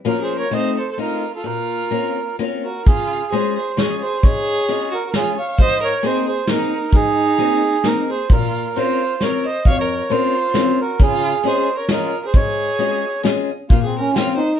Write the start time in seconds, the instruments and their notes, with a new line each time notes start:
0.05 steel-string acoustic guitar F3 A#3 C#4 F4, violin F4, accordion A#4
0.21 violin G#4, accordion C5
0.37 violin A#4, accordion C#5
0.51 steel-string acoustic guitar A3 C4 D#4 F4, violin C5, accordion D#5
0.78 violin A4, accordion C5
0.91 violin A4, accordion C5
0.98 steel-string acoustic guitar A3 C4 D#4 F4, violin F4, accordion A#4
1.35 violin F4, accordion A4
1.44 steel-string acoustic guitar A#2, accordion A#4
1.48 violin F4
1.91 steel-string acoustic guitar A#3 C4 C#4 F4
2.39 steel-string acoustic guitar A#3 C4 C#4 F4
2.64 violin F#4, accordion A#4
2.85 steel-string acoustic guitar C#3, violin F4, accordion G#4, kick, closed hi-hat
3.32 steel-string acoustic guitar G#3 C#4 F4 G#4, violin G#4, accordion C5, closed hi-hat
3.56 violin G#4, accordion C5
3.76 steel-string acoustic guitar G#3 C#4 F4 G#4, violin G#4, accordion C#5, snare, closed hi-hat
4.02 violin G#4, accordion C5
4.22 steel-string acoustic guitar G#2, violin G#4, accordion C#5, kick, closed hi-hat
4.68 steel-string acoustic guitar G#3 C#4 F4 G#4, closed hi-hat
4.91 violin F#4, accordion A#4
5.07 violin F#4, accordion A#4
5.14 steel-string acoustic guitar G#3 C#4 F4 G#4, violin F4, accordion G#4, snare, closed hi-hat
5.37 violin C#5, accordion F5
5.59 steel-string acoustic guitar G#2, violin C5, accordion D#5, kick, closed hi-hat
5.83 violin A#4, accordion C#5
6.03 steel-string acoustic guitar A#3 C4 D#4 G#4, violin G#4, accordion C5, closed hi-hat
6.27 violin G#4, accordion C5
6.47 steel-string acoustic guitar A#3 C4 D#4 G#4, violin D#4, accordion A#4, snare, closed hi-hat
6.92 steel-string acoustic guitar G#2, violin D#4, accordion G#4, kick, closed hi-hat
7.37 steel-string acoustic guitar A#3 C4 D#4 G#4, closed hi-hat
7.84 steel-string acoustic guitar A#3 C4 D#4 G#4, violin D#4, accordion A#4, snare, closed hi-hat
8.09 violin G#4, accordion C5
8.30 steel-string acoustic guitar A#2, violin F4, accordion A#4, kick, closed hi-hat
8.75 steel-string acoustic guitar C4 C#4 F4 A#4, violin F4, accordion C5, closed hi-hat
9.21 steel-string acoustic guitar C4 C#4 F4 A#4, violin A#4, accordion C#5, snare, closed hi-hat
9.46 violin C5, accordion D#5
9.65 steel-string acoustic guitar F2, violin C#5, accordion F5, kick, closed hi-hat
9.78 violin A#4, accordion C#5
10.10 steel-string acoustic guitar C4 C#4 F4 A#4, violin F4, accordion C5, closed hi-hat
10.54 steel-string acoustic guitar C4 C#4 F4 A#4, snare, closed hi-hat
10.81 violin F#4, accordion A#4
10.99 steel-string acoustic guitar C#3, violin F4, accordion G#4, kick, closed hi-hat
11.44 steel-string acoustic guitar G#3 C#4 F4 G#4, violin G#4, accordion C5, closed hi-hat
11.76 violin A#4, accordion C#5
11.88 steel-string acoustic guitar G#3 C#4 F4 G#4, violin F4, accordion A#4, snare, closed hi-hat
12.25 violin G#4, accordion C5
12.34 steel-string acoustic guitar G#2, violin G#4, accordion C#5, kick, closed hi-hat
12.79 steel-string acoustic guitar G#3 C#4 F4 G#4, closed hi-hat
13.23 steel-string acoustic guitar G#3 C#4 F4 G#4, snare, closed hi-hat
13.69 steel-string acoustic guitar A#2, accordion A#3, violin F4, kick, closed hi-hat
13.83 accordion C4, violin G#4
13.99 accordion C#4, violin A#4
14.13 steel-string acoustic guitar A#3 C4 C#4, accordion C4, violin F4, snare, closed hi-hat
14.18 steel-string acoustic guitar F4
14.36 accordion D#4, violin C5